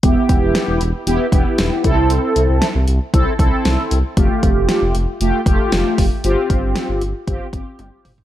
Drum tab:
HH |x-x-x-x-x-x-x-x-|x-x-x-x-x-x-x-x-|x-x-x-x-x-x-x-o-|x-x-x-x-x-x-x-o-|
SD |----o-------o---|----o-------o---|----o-------o---|----o-----------|
T1 |----------------|----------------|----------------|------------o---|
T2 |----------------|----------------|----------------|--------------o-|
FT |----------------|----------------|----------------|---------------o|
BD |o-o-------o---o-|--------o-o-----|o-o-------o---o-|--o-----o-o-----|